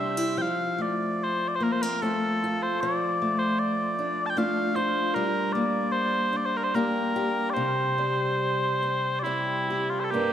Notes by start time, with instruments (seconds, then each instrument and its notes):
Already playing: steel-string acoustic guitar C3 G3 C4 D4
0.00 bagpipes E5
0.17 steel-string acoustic guitar E4
0.37 steel-string acoustic guitar F3, bagpipes G5
0.42 bagpipes F5
0.78 steel-string acoustic guitar A3, bagpipes D5
1.24 bagpipes C5
1.48 bagpipes D5
1.56 bagpipes C5
1.60 steel-string acoustic guitar A#3, bagpipes A#4
1.72 bagpipes C5
1.82 steel-string acoustic guitar C4, bagpipes A#4
2.02 steel-string acoustic guitar A3 C4 F4, bagpipes A4
2.44 steel-string acoustic guitar F4
2.63 bagpipes C5
2.81 steel-string acoustic guitar F3, bagpipes D5
3.22 steel-string acoustic guitar A3
3.39 bagpipes C5
3.59 bagpipes D5
3.99 steel-string acoustic guitar D4
4.26 bagpipes G5 A5
4.37 steel-string acoustic guitar A3 D4 F4, bagpipes F5
4.76 steel-string acoustic guitar F4, bagpipes C5
5.14 steel-string acoustic guitar G3, bagpipes A#4
5.52 steel-string acoustic guitar A#3, bagpipes D5
5.92 bagpipes C5
6.33 steel-string acoustic guitar D4, bagpipes D5
6.46 bagpipes C5
6.57 bagpipes A#4
6.64 bagpipes C5
6.74 steel-string acoustic guitar A#3 D4 G4, bagpipes A#4
7.16 steel-string acoustic guitar G4
7.50 bagpipes C5 D5
7.56 steel-string acoustic guitar C3
7.98 steel-string acoustic guitar G3
8.83 steel-string acoustic guitar C4
9.19 bagpipes E4 D5
9.25 steel-string acoustic guitar G3 C4 G4
9.70 steel-string acoustic guitar G4
9.90 bagpipes F4
10.00 bagpipes A4 C5
10.11 steel-string acoustic guitar G2 D4, fiddle A#3, bagpipes G4